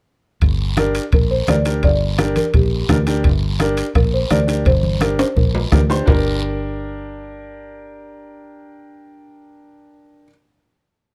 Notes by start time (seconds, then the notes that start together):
0.41 G1, bombo low, high conga, high timbale, long guiro
0.77 D4 G4 A#4, bombo rim, high conga, high timbale, short guiro
0.95 high timbale, short guiro
1.12 A#1 A#4, bombo low, high conga, low conga, high timbale, long guiro
1.31 C5
1.47 D2 D4 G4 A#4 D5, bombo rim, high conga, high timbale, low timbale, short guiro
1.65 D4 G4 A#4, high timbale, short guiro
1.83 G1 D5, bombo low, high conga, high timbale, long guiro
2.18 D4 G4 A#4, bombo rim, high conga, high timbale, short guiro
2.36 A#4, high conga, high timbale, short guiro
2.54 A#1 G4, bombo low, high conga, low conga, high timbale, long guiro
2.89 D2 D4 G4 A#4, bombo rim, high conga, low conga, high timbale, low timbale, short guiro
3.07 D4 G4 A#4, high timbale, short guiro
3.24 G1, bombo low, high conga, high timbale, long guiro
3.59 D4 G4 A#4, bombo rim, high conga, high timbale, short guiro
3.77 high timbale, short guiro
3.95 A#1 A#4, bombo low, bombo rim, high conga, low conga, high timbale, long guiro
4.14 C5
4.30 D2 D4 G4 A#4 D5, bombo rim, high conga, high timbale, short guiro
4.47 D4 G4 A#4, high timbale, short guiro
4.65 G1 C5, bombo low, high conga, low conga, high timbale, long guiro
4.83 high conga
5.01 D4 G4 A#4, bombo rim, high conga, high timbale, short guiro
5.19 C5, high timbale, short guiro
5.36 A#1 A#4, bombo low, high conga, low conga, long guiro
5.55 low timbale
5.72 D2 D4 G4 A#4, bombo low, bombo rim, high conga, low timbale, short guiro
5.89 D4 G4 C5, low timbale, short guiro
6.06 G1 D4 G4 A#4, bombo low, low conga, low timbale, long guiro
6.10 A#4